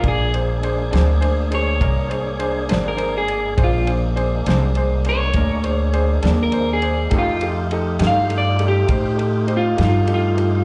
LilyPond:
<<
  \new Staff \with { instrumentName = "Clean electric guitar" } { \time 12/8 \key bes \mixolydian \tempo 4. = 68 aes'8 r2 des''2~ des''16 bes'8 aes'8. | f'8 r2 des''2~ des''16 bes'8 aes'8. | f'8 r4 f''8 d''8 g'4. f'8 f'8 f'4 | }
  \new Staff \with { instrumentName = "Upright piano" } { \time 12/8 \key bes \mixolydian <d' aes' d''>8 <d' aes' c''>8 <d' aes' c''>8 <d' aes' c''>8 <d' aes' c''>8 <d' aes' c''>8 <d' aes' bes'>8 <d' aes' c''>8 <d' aes' c''>8 <d' aes' c''>8 <d' aes' c''>8 <d' aes' d''>8 | <d' aes' c''>8 <d' aes' c''>8 <d' aes' c''>8 <d' aes' c''>8 <d' aes' c''>8 <d' aes' c''>8 <d' aes' bes'>8 <d' aes' c''>8 <d' aes' c''>8 <d' aes' d''>8 <d' aes' c''>8 <d' aes' c''>8 | <ees' g' a'>8 <ees' g' a'>8 <ees' g' a'>8 <ees' g' a'>8 <ees' g' a'>8 <ees' g' a'>8 <ees' g' c''>8 <ees' g' a'>8 <ees' g' c''>8 <ees' g' a'>8 <ees' g' a'>8 <ees' g' a'>8 | }
  \new Staff \with { instrumentName = "Tonewheel organ" } { \time 12/8 \key bes \mixolydian <aes bes d' aes'>1. | <aes bes d'>1. | <a ees' f' g'>1. | }
  \new Staff \with { instrumentName = "Clean electric guitar" } { \time 12/8 \key bes \mixolydian r4. <bes, aes c' d'>8 r2 r8 <bes, aes c' d'>8 r4 | r4. <bes, aes c' d'>8 r2 r8 <bes, aes c' d'>8 r4 | <f a ees' g'>8 r4 <f a ees' g'>8 r2 r8 <f a ees' g'>8 r4 | }
  \new Staff \with { instrumentName = "Upright bass" } { \clef bass \time 12/8 \key bes \mixolydian bes,,4. d,4. c,4. aes,,4. | bes,,4. c,4. d,4. ees,4. | f,4. g,4. a,4. g,4. | }
  \new DrumStaff \with { instrumentName = "Drums" } \drummode { \time 12/8 <bd cymr>8 cymr8 cymr8 <cymr sn>8 cymr8 cymr8 <bd cymr>8 cymr8 cymr8 <cymr sn>8 cymr8 cymr8 | <bd cymr>8 cymr8 cymr8 <cymr sn>8 cymr8 cymr8 <bd cymr>8 cymr8 cymr8 <cymr sn>8 cymr8 cymr8 | <bd cymr>8 cymr8 cymr8 <cymr sn>8 cymr8 cymr8 <bd cymr>8 cymr8 cymr8 <cymr sn>8 cymr8 cymr8 | }
>>